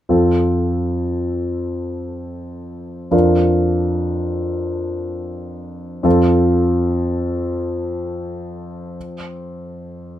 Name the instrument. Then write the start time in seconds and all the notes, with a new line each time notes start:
grand piano
0.09 F2 C4 F4 A4
3.11 F2 D4 F4 A#4
6.03 F2 C4 F4 A4